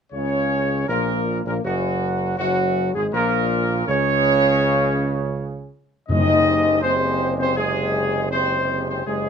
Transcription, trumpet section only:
0.13 0.85 C#5 medium
0.88 1.41 A#4 medium
1.46 1.55 A#4 medium
1.64 2.35 F#4 medium
2.38 2.90 F#4 medium
2.95 3.04 G#4 medium
3.13 3.84 A#4 medium
3.87 5.68 C#5 medium
6.09 6.78 D#5 medium
6.81 7.33 C5 medium
7.38 7.55 C5 medium
7.56 8.27 G#4 medium
8.31 8.84 C5 medium
8.89 9.06 C5 medium
9.07 9.29 G#4 medium

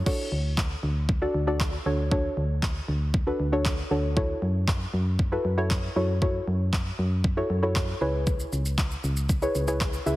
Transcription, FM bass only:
0.32 0.76 D2 medium
0.83 1.27 D2 medium
1.34 1.78 D2 medium
1.86 2.29 D2 medium
2.37 2.81 D2 medium
2.88 3.32 D2 medium
3.40 3.83 D2 medium
3.91 4.34 D2 medium
4.42 4.86 F#2 medium
4.94 5.37 F#2 medium
5.45 5.88 F#2 medium
5.96 6.40 F#2 medium
6.48 6.91 F#2 medium
6.99 7.42 F#2 medium
7.50 7.94 F#2 medium
8.01 8.45 C#2 medium
8.53 8.96 C#2 medium
9.04 9.47 C#2 medium
9.55 9.99 C#2 medium
10.06 10.16 C#2 medium

